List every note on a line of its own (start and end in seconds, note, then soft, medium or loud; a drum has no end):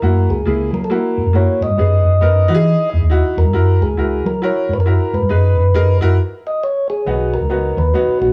0.00 0.25 F#2 loud
0.00 0.33 A#3 medium
0.00 0.33 E4 medium
0.00 0.34 F#4 medium
0.00 0.31 A#4 medium
0.29 0.43 C#2 medium
0.29 0.71 G#4 medium
0.45 0.69 C#2 medium
0.45 0.77 A#3 medium
0.45 0.77 E4 medium
0.45 0.77 G#4 medium
0.73 0.98 F#3 loud
0.73 0.79 A#4 medium
0.84 0.90 A4 medium
0.90 1.21 A#3 medium
0.90 1.21 E4 medium
0.90 1.22 F#4 medium
0.90 1.36 A#4 medium
1.17 1.25 G#2 medium
1.26 1.44 F#2 medium
1.33 1.65 A#3 medium
1.33 1.65 E4 medium
1.33 1.65 F#4 medium
1.33 1.63 C#5 loud
1.61 1.68 G#2 medium
1.61 2.90 D#5 loud
1.70 1.77 G2 medium
1.77 2.00 F#2 medium
1.77 2.09 B3 medium
1.77 2.09 D#4 medium
1.77 2.10 G#4 medium
2.05 2.19 F#2 medium
2.21 2.45 F#2 loud
2.21 2.49 B3 medium
2.21 2.47 D#4 medium
2.21 2.49 A#4 medium
2.48 2.75 E3 loud
2.48 3.00 D#4 loud
2.48 3.00 E4 medium
2.48 2.54 F#4 medium
2.55 3.03 G#4 loud
2.93 3.00 E2 medium
3.02 3.20 D#2 medium
3.10 3.41 D#4 medium
3.10 3.42 E4 medium
3.10 3.42 F#4 medium
3.37 3.44 E2 loud
3.37 3.83 A#4 loud
3.45 3.52 G2 medium
3.53 3.76 F#2 loud
3.53 3.85 E4 medium
3.53 3.85 F#4 medium
3.53 3.85 A#4 medium
3.81 3.95 C#2 loud
3.81 4.27 G#4 medium
3.97 4.20 C#2 medium
3.97 4.29 E4 medium
3.97 4.29 F#4 medium
3.97 4.29 A#4 medium
4.25 4.51 F#3 loud
4.25 4.42 A#4 medium
4.42 4.73 E4 medium
4.42 4.73 F#4 medium
4.42 4.74 A#4 medium
4.42 4.74 C#5 loud
4.69 4.76 G#2 medium
4.74 4.79 B4 medium
4.78 4.96 F#2 medium
4.78 5.15 A#4 loud
4.86 5.17 E4 medium
4.86 5.17 F#4 medium
4.86 5.17 A#4 medium
5.13 5.20 G#2 medium
5.13 5.98 B4 loud
5.22 5.29 G2 loud
5.29 5.53 F#2 loud
5.29 5.61 D#4 medium
5.29 5.61 G#4 medium
5.29 5.61 B4 medium
5.57 5.71 F#2 medium
5.74 5.97 F#2 medium
5.74 6.01 D#4 medium
5.74 6.01 G#4 medium
5.74 6.01 A#4 loud
6.01 6.16 F#2 loud
6.01 6.15 E4 medium
6.01 6.15 F#4 medium
6.01 6.16 A#4 loud
6.47 6.64 D#5 loud
6.64 6.88 C#5 medium
6.90 7.35 G#4 loud
7.06 7.36 B1 loud
7.06 7.37 F#3 medium
7.06 7.37 B3 medium
7.06 7.37 D#4 medium
7.06 7.38 F#4 medium
7.34 7.79 A#4 loud
7.42 7.71 C#2 medium
7.49 7.81 F#3 medium
7.49 7.81 B3 medium
7.49 7.81 D#4 medium
7.49 7.81 F#4 medium
7.77 7.91 D#2 loud
7.77 8.19 B4 loud
7.94 8.25 F#3 medium
7.94 8.25 B3 medium
7.94 8.25 D#4 medium
7.94 8.25 F#4 medium
8.08 muted fingered electric bass stroke soft
8.21 8.33 A#1 medium
8.21 8.33 F#4 medium